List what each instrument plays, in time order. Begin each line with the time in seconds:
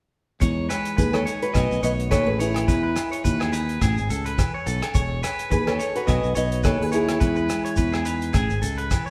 0.40 clean electric guitar E2 E3 G#3 D#4 G#4 C#5, fingered electric bass E2, kick, closed hi-hat, shekere
0.69 clean electric guitar B4, cross-stick, closed hi-hat, low agogo, shekere
0.85 closed hi-hat, shekere
0.97 fingered electric bass D#2, clean electric guitar E3 B4, steel-string acoustic guitar G#4 B4, kick, closed hi-hat, shekere
1.13 steel-string acoustic guitar A4 C#5, cross-stick, low agogo, shekere
1.26 clean electric guitar D#4 C#5, closed hi-hat, shekere
1.42 steel-string acoustic guitar F#4 B4, closed hi-hat
1.54 fingered electric bass B1, clean electric guitar B2 D#3 A3 D#4 D#5, kick, cross-stick, closed hi-hat, low agogo, shekere
1.58 clean electric guitar F#4
1.71 fingered electric bass B1, shekere
1.83 fingered electric bass B1, steel-string acoustic guitar B4 D#5, clean electric guitar C#5, closed hi-hat, shekere
2.00 closed hi-hat
2.11 fingered electric bass D#2, clean electric guitar D#3 B4, steel-string acoustic guitar A4 C#5, kick, cross-stick, closed hi-hat, low agogo, shekere
2.26 fingered electric bass A1, steel-string acoustic guitar G#4 B4
2.39 clean electric guitar D#4 C#5, steel-string acoustic guitar E4 G#4, closed hi-hat, shekere
2.54 cross-stick, closed hi-hat, low agogo
2.68 clean electric guitar E2 D#4 B4, fingered electric bass E2, kick, closed hi-hat, shekere
2.83 clean electric guitar B4
2.96 cross-stick, closed hi-hat, low agogo, shekere
3.12 clean electric guitar C#5, closed hi-hat, shekere
3.24 fingered electric bass D#2, clean electric guitar E3 B4, kick, closed hi-hat, shekere
3.40 clean electric guitar G#4, cross-stick, low agogo, shekere
3.52 clean electric guitar D#4 B4, closed hi-hat, shekere
3.69 closed hi-hat
3.80 fingered electric bass A1, clean electric guitar A2 G#4, kick, cross-stick, closed hi-hat, low agogo, shekere
3.98 fingered electric bass G#1, shekere
4.10 fingered electric bass C#2, clean electric guitar A4, closed hi-hat, shekere
4.26 clean electric guitar B4, closed hi-hat
4.38 clean electric guitar E3, kick, cross-stick, closed hi-hat, low agogo, shekere
4.54 clean electric guitar C#5
4.66 fingered electric bass B1, clean electric guitar B3 A4, closed hi-hat, shekere
4.82 clean electric guitar C#4, cross-stick, closed hi-hat, low agogo
4.94 fingered electric bass E1, clean electric guitar E2 G#4 C#5, kick, closed hi-hat, shekere
5.23 clean electric guitar B4, cross-stick, closed hi-hat, low agogo, shekere
5.39 closed hi-hat, shekere
5.50 fingered electric bass D#2, clean electric guitar E3 B4, steel-string acoustic guitar G#4 B4, kick, closed hi-hat, shekere
5.67 steel-string acoustic guitar A4 C#5, cross-stick, low agogo
5.79 clean electric guitar D#4 C#5, closed hi-hat, shekere
5.95 steel-string acoustic guitar F#4 B4, closed hi-hat
6.07 fingered electric bass B1, clean electric guitar B2 F#4 D#5, kick, cross-stick, closed hi-hat, low agogo, shekere
6.23 fingered electric bass B1, shekere
6.35 fingered electric bass B1, steel-string acoustic guitar B4 D#5, clean electric guitar C#5, closed hi-hat, shekere
6.52 closed hi-hat
6.63 fingered electric bass D#2, clean electric guitar D#3 B4, steel-string acoustic guitar A4 C#5, kick, cross-stick, closed hi-hat, low agogo, shekere
6.81 fingered electric bass D#2, steel-string acoustic guitar G#4 B4
6.92 clean electric guitar D#4 C#5, steel-string acoustic guitar E4 G#4, closed hi-hat, shekere
7.08 cross-stick, closed hi-hat, low agogo
7.20 clean electric guitar E2 E3 G#3 B4, fingered electric bass E2, kick, closed hi-hat, shekere
7.36 clean electric guitar B4, shekere
7.49 cross-stick, closed hi-hat, low agogo, shekere
7.65 clean electric guitar C#5, closed hi-hat, shekere
7.76 fingered electric bass E2, clean electric guitar E3 B4, kick, closed hi-hat, shekere
7.92 clean electric guitar G#4, cross-stick, low agogo, shekere
8.05 clean electric guitar D#4 B4, closed hi-hat, shekere
8.21 closed hi-hat, shekere
8.33 fingered electric bass A1, clean electric guitar A2 G#4, kick, cross-stick, closed hi-hat, low agogo, shekere
8.50 fingered electric bass G#1, shekere
8.62 fingered electric bass C#2, clean electric guitar A4, closed hi-hat, shekere
8.78 clean electric guitar B4, closed hi-hat
8.91 clean electric guitar E3, kick, cross-stick, closed hi-hat, low agogo, shekere
9.06 clean electric guitar C#5